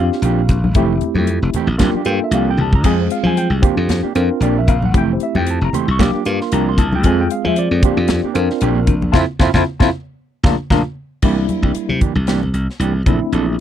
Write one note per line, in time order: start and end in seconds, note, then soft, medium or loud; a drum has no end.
0.00 0.56 C4 medium
0.00 0.56 D4 medium
0.00 0.56 F4 medium
0.00 0.56 G4 medium
0.00 0.72 F5 medium
0.12 muted clean electric guitar stroke soft
0.12 snare soft
0.22 0.45 A#1 loud
0.22 0.41 F3 medium
0.22 0.41 A#3 medium
0.22 0.41 D4 medium
0.22 0.41 G4 medium
0.22 closed hi-hat medium
0.49 0.75 A#1 medium
0.49 muted clean electric guitar stroke soft
0.49 kick medium
0.49 closed hi-hat medium
0.49 low conga medium
0.64 muted clean electric guitar stroke soft
0.64 high conga medium
0.75 0.98 F1 loud
0.75 0.93 E3 medium
0.75 1.53 A3 medium
0.75 0.93 A3 medium
0.75 1.53 C4 medium
0.75 0.93 C4 medium
0.75 1.53 E4 medium
0.75 1.54 G4 medium
0.75 0.94 G4 loud
0.75 kick loud
0.75 closed hi-hat medium
1.01 muted clean electric guitar stroke soft
1.01 closed hi-hat medium
1.01 low conga medium
1.15 1.38 F2 medium
1.15 1.29 G4 medium
1.15 high conga medium
1.19 1.29 A3 soft
1.19 1.29 C4 medium
1.27 muted clean electric guitar stroke soft
1.27 closed hi-hat medium
1.42 1.53 F1 medium
1.42 muted clean electric guitar stroke soft
1.54 1.69 E3 medium
1.54 1.69 A3 medium
1.54 1.70 C4 medium
1.54 1.69 G4 medium
1.54 muted slap bass stroke soft
1.54 closed hi-hat medium
1.54 low conga medium
1.67 1.78 A#1 medium
1.67 muted clean electric guitar stroke soft
1.78 1.93 C2 medium
1.78 1.96 F3 medium
1.78 2.01 A#3 medium
1.78 2.01 D4 medium
1.78 2.01 F4 medium
1.78 2.01 G4 medium
1.78 kick medium
1.78 snare medium
1.78 closed hi-hat medium
1.78 high conga medium
1.82 1.96 A#3 medium
1.82 1.95 D4 medium
1.82 1.95 G4 medium
1.94 2.07 A#3 soft
1.94 2.07 D4 soft
1.94 2.07 G4 soft
1.94 muted slap bass stroke soft
2.05 2.19 G2 medium
2.05 2.65 A#3 medium
2.05 2.65 D4 medium
2.05 2.65 F4 medium
2.05 2.66 A4 medium
2.05 2.21 G5 medium
2.05 muted clean electric guitar stroke soft
2.05 closed hi-hat medium
2.22 2.34 E5 medium
2.22 muted clean electric guitar stroke soft
2.31 2.55 C2 medium
2.31 2.50 F3 medium
2.31 2.50 A#3 medium
2.31 2.50 D4 medium
2.31 2.50 G4 medium
2.31 2.48 F5 medium
2.31 closed hi-hat medium
2.50 2.60 G5 medium
2.57 2.84 C2 medium
2.57 2.74 A5 loud
2.57 muted clean electric guitar stroke soft
2.57 high tom medium
2.57 low conga medium
2.73 2.86 A#5 medium
2.73 muted clean electric guitar stroke soft
2.73 kick medium
2.73 high conga medium
2.84 3.07 F2 medium
2.84 3.01 F3 medium
2.84 3.02 G#3 medium
2.84 3.63 G#3 medium
2.84 3.01 C4 medium
2.84 3.61 C4 medium
2.84 3.62 F4 medium
2.84 3.02 G#4 medium
2.84 3.63 G#4 medium
2.84 3.00 G#5 medium
2.84 kick loud
2.84 closed hi-hat medium
2.84 crash medium
3.01 3.12 C5 medium
3.10 3.26 F5 medium
3.10 muted clean electric guitar stroke soft
3.10 closed hi-hat medium
3.23 3.47 F3 medium
3.23 3.36 G#3 soft
3.23 3.36 C4 soft
3.23 3.36 G#4 medium
3.23 3.38 G#5 loud
3.23 high conga medium
3.37 3.53 G5 loud
3.37 muted clean electric guitar stroke soft
3.37 closed hi-hat medium
3.50 3.61 C2 medium
3.50 muted clean electric guitar stroke soft
3.62 3.78 F3 medium
3.62 3.77 A#3 medium
3.62 4.06 C4 medium
3.62 4.06 D4 medium
3.62 3.76 D4 medium
3.62 4.07 F4 medium
3.62 4.06 G4 medium
3.62 3.76 G4 medium
3.62 muted slap bass stroke soft
3.62 kick loud
3.62 closed hi-hat medium
3.62 low conga medium
3.77 4.00 F2 medium
3.77 muted clean electric guitar stroke soft
3.89 snare loud
3.89 closed hi-hat medium
3.89 high conga medium
4.03 4.14 A#3 soft
4.03 4.14 D4 soft
4.03 4.15 G4 medium
4.03 muted slap bass stroke soft
4.15 4.28 F2 medium
4.15 4.75 C4 medium
4.15 4.75 D4 medium
4.15 4.75 F4 medium
4.15 4.75 A#4 medium
4.15 muted clean electric guitar stroke soft
4.15 closed hi-hat medium
4.31 muted clean electric guitar stroke soft
4.40 4.64 A#1 medium
4.40 4.59 F3 medium
4.40 4.59 A#3 medium
4.40 4.59 D4 medium
4.40 4.59 G4 medium
4.40 4.57 D5 medium
4.40 closed hi-hat medium
4.59 4.69 E5 medium
4.67 4.94 A#1 medium
4.67 4.83 F5 medium
4.67 muted clean electric guitar stroke soft
4.67 kick medium
4.67 closed hi-hat medium
4.67 low conga medium
4.82 4.96 F#5 medium
4.82 muted clean electric guitar stroke soft
4.82 high conga medium
4.94 5.17 F1 medium
4.94 5.12 E3 medium
4.94 5.72 A3 medium
4.94 5.12 A3 medium
4.94 5.73 C4 medium
4.94 5.12 C4 medium
4.94 5.72 E4 medium
4.94 5.72 G4 medium
4.94 5.12 G4 medium
4.94 kick loud
4.94 closed hi-hat medium
4.98 5.10 G5 loud
5.13 5.22 C5 medium
5.20 5.36 E5 medium
5.20 muted clean electric guitar stroke soft
5.20 closed hi-hat medium
5.35 5.58 F2 medium
5.35 5.46 A3 soft
5.35 5.46 C4 soft
5.35 5.46 G4 medium
5.35 5.48 G5 medium
5.35 high conga medium
5.47 muted clean electric guitar stroke soft
5.47 closed hi-hat medium
5.51 5.63 A5 medium
5.61 5.72 F1 medium
5.61 5.75 A#5 medium
5.61 muted clean electric guitar stroke soft
5.73 5.88 E3 medium
5.73 5.88 A3 medium
5.73 5.88 C4 medium
5.73 5.88 G4 medium
5.73 5.88 C6 medium
5.73 closed hi-hat medium
5.73 low conga medium
5.88 5.98 C2 medium
5.88 6.01 C#6 loud
5.88 muted clean electric guitar stroke soft
5.99 6.12 C2 medium
5.99 6.14 F3 medium
5.99 6.21 A#3 medium
5.99 6.13 A#3 medium
5.99 6.21 D4 medium
5.99 6.13 D4 medium
5.99 6.21 F4 medium
5.99 6.21 G4 medium
5.99 6.12 G4 medium
5.99 6.39 D6 loud
5.99 kick medium
5.99 snare loud
5.99 closed hi-hat medium
5.99 high conga medium
6.14 6.24 A#3 soft
6.14 6.25 D4 soft
6.14 6.25 G4 medium
6.25 6.39 G2 medium
6.25 6.85 A#3 medium
6.25 6.85 D4 medium
6.25 6.85 F4 medium
6.25 6.85 A#4 medium
6.25 muted clean electric guitar stroke soft
6.25 closed hi-hat medium
6.41 6.53 C6 medium
6.41 muted clean electric guitar stroke soft
6.41 snare soft
6.52 6.75 C2 medium
6.52 6.69 F3 medium
6.52 6.69 A#3 medium
6.52 6.69 D4 medium
6.52 6.69 G4 medium
6.52 6.67 A#5 medium
6.52 closed hi-hat medium
6.69 6.79 C6 loud
6.78 7.04 C2 medium
6.78 6.92 A5 medium
6.78 muted clean electric guitar stroke soft
6.78 kick medium
6.78 closed hi-hat medium
6.78 low conga medium
6.93 7.05 G5 medium
6.93 muted clean electric guitar stroke soft
6.93 high conga medium
7.03 7.27 F2 loud
7.03 7.22 F3 medium
7.03 7.82 G#3 medium
7.03 7.22 G#3 medium
7.03 7.82 C4 medium
7.03 7.22 C4 medium
7.03 7.83 F4 medium
7.03 7.22 G#4 medium
7.03 7.83 G#4 medium
7.03 7.20 G#5 medium
7.03 kick loud
7.03 closed hi-hat medium
7.21 7.31 G5 medium
7.30 7.45 F5 medium
7.30 muted clean electric guitar stroke soft
7.30 closed hi-hat medium
7.45 7.68 F3 medium
7.45 7.57 G#3 soft
7.45 7.57 C4 medium
7.45 7.57 G#4 medium
7.45 7.58 E5 medium
7.45 high conga medium
7.56 9.11 D5 medium
7.56 muted clean electric guitar stroke soft
7.56 closed hi-hat medium
7.71 7.81 F2 medium
7.71 muted clean electric guitar stroke soft
7.82 7.98 F3 medium
7.82 7.98 A#3 medium
7.82 8.26 C4 medium
7.82 8.27 D4 medium
7.82 7.99 D4 medium
7.82 8.27 F4 medium
7.82 8.27 G4 medium
7.82 7.98 G4 medium
7.82 muted slap bass stroke soft
7.82 kick loud
7.82 closed hi-hat medium
7.82 low conga medium
7.97 8.20 F2 medium
7.97 muted clean electric guitar stroke soft
8.08 snare loud
8.08 closed hi-hat medium
8.08 high conga medium
8.23 8.36 A#3 medium
8.23 8.36 D4 medium
8.23 8.36 G4 medium
8.23 muted slap bass stroke soft
8.34 8.48 F2 medium
8.34 8.94 C4 medium
8.34 8.94 D4 medium
8.34 8.94 F4 medium
8.34 8.94 A#4 medium
8.34 muted clean electric guitar stroke medium
8.34 closed hi-hat medium
8.50 muted clean electric guitar stroke soft
8.50 snare soft
8.61 8.84 A#1 loud
8.61 8.79 F3 medium
8.61 8.79 A#3 medium
8.61 8.79 D4 loud
8.61 8.79 G4 loud
8.61 closed hi-hat medium
8.87 9.13 A#1 medium
8.87 muted clean electric guitar stroke soft
8.87 kick medium
8.87 closed hi-hat medium
8.87 low conga medium
9.02 muted clean electric guitar stroke medium
9.02 high conga medium
9.12 9.24 F2 medium
9.12 9.24 C4 medium
9.12 9.24 C4 loud
9.12 9.24 E4 loud
9.12 9.23 F4 loud
9.12 9.24 F4 loud
9.12 9.22 F5 medium
9.12 9.22 A5 loud
9.12 9.22 C6 loud
9.12 kick medium
9.12 snare medium
9.12 low conga loud
9.16 9.24 E4 loud
9.39 9.50 F2 medium
9.39 9.50 C4 medium
9.39 9.50 C4 loud
9.39 9.50 E4 loud
9.39 9.50 E4 medium
9.39 9.50 F4 medium
9.39 9.49 F5 medium
9.39 9.49 A5 medium
9.39 9.49 C6 loud
9.39 kick medium
9.39 snare medium
9.39 low conga medium
9.54 9.63 F2 loud
9.54 9.62 C4 loud
9.54 9.63 C4 medium
9.54 9.62 E4 medium
9.54 9.63 E4 loud
9.54 9.62 F4 loud
9.54 9.63 F4 loud
9.54 9.62 F5 loud
9.54 9.62 A5 loud
9.54 9.62 C6 loud
9.54 kick medium
9.54 snare medium
9.54 low conga loud
9.80 9.89 F2 medium
9.80 9.89 C4 medium
9.80 9.89 E4 medium
9.80 9.89 E4 loud
9.80 9.89 F4 medium
9.80 9.89 F4 loud
9.80 9.88 F5 medium
9.80 9.87 A5 loud
9.80 9.88 C6 loud
9.80 kick medium
9.80 snare medium
9.80 low conga medium
10.43 10.55 A#1 loud
10.43 10.54 A3 loud
10.43 10.54 A#3 loud
10.43 10.55 A#3 loud
10.43 10.54 D4 loud
10.43 10.55 D4 loud
10.43 10.55 F4 loud
10.43 10.54 F5 medium
10.43 10.54 A5 medium
10.43 10.54 A#5 medium
10.43 kick loud
10.43 snare loud
10.43 low conga loud
10.70 10.81 A#1 loud
10.70 10.80 A3 loud
10.70 10.81 A#3 medium
10.70 10.80 D4 loud
10.70 10.81 D4 loud
10.70 10.81 F4 loud
10.70 10.80 F5 loud
10.70 10.81 A5 loud
10.70 10.80 A#5 loud
10.70 kick medium
10.70 snare medium
10.70 low conga loud
11.22 11.46 C2 medium
11.22 11.38 E3 medium
11.22 12.01 G3 medium
11.22 11.38 A#3 medium
11.22 12.01 A#3 medium
11.22 11.38 D4 medium
11.22 12.02 D4 medium
11.22 12.02 E4 medium
11.22 11.38 G4 medium
11.22 kick medium
11.22 crash medium
11.39 muted clean electric guitar stroke soft
11.49 muted clean electric guitar stroke soft
11.49 closed hi-hat medium
11.49 high conga medium
11.62 11.73 C2 medium
11.62 11.75 A#3 soft
11.62 11.75 D4 soft
11.62 11.75 G4 soft
11.62 kick medium
11.75 muted slap bass stroke soft
11.75 muted clean electric guitar stroke soft
11.75 closed hi-hat medium
11.89 12.00 C3 medium
11.89 high conga medium
12.01 12.16 E3 medium
12.01 12.15 A#3 medium
12.01 12.15 D4 medium
12.01 12.14 G4 medium
12.01 kick medium
12.01 closed hi-hat medium
12.01 low conga medium
12.15 12.49 C2 medium
12.15 muted clean electric guitar stroke soft
12.15 high conga medium
12.27 12.42 E3 medium
12.27 12.43 A#3 medium
12.27 12.43 D4 medium
12.27 12.42 G4 medium
12.27 snare medium
12.27 closed hi-hat medium
12.43 muted clean electric guitar stroke soft
12.43 high conga medium
12.54 12.67 C2 medium
12.54 muted clean electric guitar stroke soft
12.54 closed hi-hat medium
12.70 snare soft
12.79 13.03 C2 medium
12.79 12.95 E3 medium
12.79 12.95 A#3 medium
12.79 12.94 D4 medium
12.79 12.94 G4 medium
12.79 closed hi-hat medium
12.96 muted clean electric guitar stroke soft
13.06 13.19 A#1 medium
13.06 13.21 E3 medium
13.06 13.60 A3 medium
13.06 13.60 C4 medium
13.06 13.21 C4 medium
13.06 13.60 D4 medium
13.06 13.21 D4 medium
13.06 13.60 E4 medium
13.06 13.21 A4 medium
13.06 kick medium
13.06 closed hi-hat soft
13.06 low conga medium
13.22 muted clean electric guitar stroke soft
13.32 13.55 A#1 medium
13.32 13.48 E3 medium
13.32 13.48 C4 medium
13.32 13.48 D4 medium
13.32 13.47 A4 medium
13.32 closed hi-hat medium
13.48 muted clean electric guitar stroke soft